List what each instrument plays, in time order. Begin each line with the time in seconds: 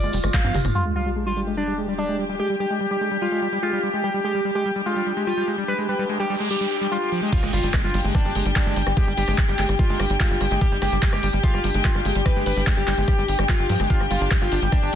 Already playing: ambient pad F4, analog synth lead D5
0.03 analog synth bass G1, acid bass G#3
0.13 analog synth bass F1, acid bass G3, open hi-hat, tambourine
0.24 analog synth bass G1, acid bass G#3, cross-stick, closed hi-hat, tambourine
0.34 acid bass G#3, analog synth lead F5, kick, clap, closed hi-hat
0.44 analog synth bass G2, acid bass B3, high tom
0.54 analog synth bass G1, acid bass G4, open hi-hat, mid tom, tambourine
0.65 analog synth bass G1, acid bass G#3, cross-stick, closed hi-hat, mid tom, tambourine
0.75 acid bass G3, string section D4, analog synth lead F4, ambient pad G4, sub drop
0.85 acid bass G#3
0.96 acid bass G3, analog synth lead F4
1.06 acid bass G3
1.16 acid bass G#3
1.26 acid bass G3, analog synth lead F4, string section G4
1.37 acid bass G3
1.47 acid bass G#3
1.57 acid bass G3, analog synth lead D4
1.68 acid bass G3
1.78 acid bass G#3
1.88 acid bass G3
1.98 acid bass G3, analog synth lead D4
2.09 acid bass G#3
2.16 acid bass G3, string section G5
2.29 acid bass G3
2.39 acid bass G#3, analog synth lead G4
2.50 acid bass G3
2.60 acid bass G3, analog synth lead G4
2.70 acid bass G#3
2.81 acid bass G3
2.91 acid bass G3, analog synth lead G4
3.01 acid bass G#3
3.11 acid bass G3
3.22 acid bass G3, analog synth lead F4
3.32 acid bass G#3
3.42 acid bass G3
3.52 acid bass G3
3.63 acid bass G#3, analog synth lead F4
3.73 acid bass G3
3.83 acid bass G3
3.94 acid bass G#3
4.04 acid bass G3, analog synth lead G4
4.14 acid bass G3
4.24 acid bass G#3, analog synth lead G4
4.35 acid bass G3
4.45 acid bass G3
4.55 acid bass G#3, analog synth lead G4
4.65 acid bass G3
4.76 acid bass G3
4.86 acid bass G#3, analog synth lead F4
4.96 acid bass G3
5.07 acid bass G3
5.17 acid bass G#3
5.27 acid bass G3, analog synth lead F4
5.37 acid bass G3
5.48 acid bass G#3
5.58 acid bass G3
5.68 acid bass G3, analog synth lead B4, noise sweep
5.78 acid bass G#3
5.89 acid bass G3, analog synth lead B4
5.99 acid bass G3
6.09 acid bass G#3
6.20 acid bass G3, analog synth lead G4
6.30 acid bass G3
6.40 acid bass G#3
6.50 acid bass G3, analog synth lead G4
6.61 acid bass G3
6.71 acid bass G4
6.81 acid bass G3
6.91 acid bass G3, analog synth lead F4
7.12 acid bass F3
7.22 acid bass G#3
7.33 acid bass G3, analog synth lead F4, ambient pad G4, kick, closed hi-hat, crash, impact
7.43 analog synth bass G1, acid bass G#3, cross-stick
7.53 analog synth bass G1, acid bass G3, analog synth lead F4, open hi-hat
7.63 analog synth bass G1, acid bass G3, closed hi-hat
7.74 acid bass G#3, kick, cross-stick, clap, closed hi-hat
7.84 analog synth bass G1, acid bass G3, analog synth lead F4
7.94 analog synth bass G1, acid bass G3, open hi-hat
8.04 analog synth bass G1, acid bass G#3, closed hi-hat
8.15 acid bass G3, analog synth lead D4, kick, cross-stick, closed hi-hat
8.25 analog synth bass G1, acid bass G3
8.35 analog synth bass G1, acid bass G#3, open hi-hat
8.46 analog synth bass G1, acid bass G3, closed hi-hat
8.56 acid bass G3, analog synth lead D4, kick, cross-stick, clap, closed hi-hat
8.66 analog synth bass G1, acid bass G#3
8.76 analog synth bass G1, acid bass G3, open hi-hat
8.87 analog synth bass G1, acid bass G3, cross-stick, closed hi-hat
8.97 acid bass G#3, analog synth lead G4, kick, closed hi-hat
9.07 analog synth bass G1, acid bass G3
9.17 analog synth bass G1, acid bass G3, analog synth lead G4, open hi-hat
9.28 analog synth bass G1, acid bass G#3, cross-stick, open hi-hat
9.38 acid bass G3, kick, clap, closed hi-hat
9.48 analog synth bass G1, acid bass G3, analog synth lead G4
9.59 analog synth bass G1, acid bass G#3, clap, open hi-hat
9.69 analog synth bass G1, acid bass G3, cross-stick, closed hi-hat
9.79 acid bass G3, analog synth lead F4, kick, closed hi-hat
9.89 analog synth bass G1, acid bass G#3
10.00 analog synth bass G1, acid bass G3, cross-stick, open hi-hat
10.10 analog synth bass G1, acid bass G3, closed hi-hat
10.20 acid bass G#3, analog synth lead F4, kick, clap, closed hi-hat
10.31 analog synth bass G1, acid bass G3
10.41 analog synth bass G1, acid bass G3, cross-stick, open hi-hat
10.51 analog synth bass G1, acid bass G#3, closed hi-hat
10.61 acid bass G3, analog synth lead G4, kick, closed hi-hat
10.72 analog synth bass G1, acid bass G3
10.82 analog synth bass G1, acid bass G#3, analog synth lead G4, cross-stick, open hi-hat
10.92 analog synth bass G1, acid bass G3, closed hi-hat
11.02 acid bass G3, kick, clap, closed hi-hat
11.13 analog synth bass G1, acid bass G#3, analog synth lead G4, cross-stick
11.23 analog synth bass G1, acid bass G3, open hi-hat
11.33 analog synth bass G1, acid bass G3, closed hi-hat
11.43 acid bass G#3, analog synth lead F4, kick, closed hi-hat
11.54 analog synth bass G1, acid bass G3, cross-stick
11.64 analog synth bass G1, acid bass G3, open hi-hat
11.74 analog synth bass G1, acid bass G#3, closed hi-hat
11.85 acid bass G3, analog synth lead F4, kick, clap, closed hi-hat
11.95 analog synth bass G1, acid bass G3, cross-stick
12.05 analog synth bass G1, acid bass G#3, open hi-hat
12.15 analog synth bass G1, acid bass G3, closed hi-hat
12.26 acid bass G3, analog synth lead B4, kick, cross-stick, closed hi-hat
12.36 analog synth bass G1, acid bass G#3
12.46 analog synth bass G1, acid bass G3, analog synth lead B4, open hi-hat
12.57 analog synth bass G1, acid bass G3, open hi-hat
12.67 acid bass G#3, kick, cross-stick, clap, closed hi-hat
12.77 analog synth bass G1, acid bass G3, analog synth lead G4
12.87 analog synth bass G1, acid bass G3, clap, open hi-hat
12.98 analog synth bass G1, acid bass G#3, closed hi-hat
13.08 acid bass G3, analog synth lead G4, kick, cross-stick, closed hi-hat
13.18 analog synth bass G1, acid bass G3
13.28 analog synth bass G1, acid bass G4, open hi-hat
13.39 analog synth bass G1, acid bass G3, cross-stick, closed hi-hat
13.49 acid bass G3, analog synth lead F4, kick, clap, closed hi-hat
13.59 analog synth bass G1
13.70 analog synth bass G2, acid bass F3, open hi-hat
13.80 analog synth bass G1, acid bass G#3, cross-stick, closed hi-hat
13.90 acid bass D4, analog synth lead F4, kick, closed hi-hat
14.00 analog synth bass G1, acid bass G3, cross-stick
14.11 analog synth bass G1, acid bass G3, analog synth lead F4, open hi-hat
14.21 analog synth bass G1, acid bass D4, closed hi-hat
14.31 acid bass G3, kick, cross-stick, clap, closed hi-hat
14.41 analog synth bass G1, acid bass G3, analog synth lead F4
14.52 analog synth bass G1, acid bass D4, open hi-hat
14.62 analog synth bass G1, acid bass G3, closed hi-hat
14.72 acid bass G3, analog synth lead D4, kick, cross-stick, closed hi-hat
14.83 analog synth bass G1, acid bass D4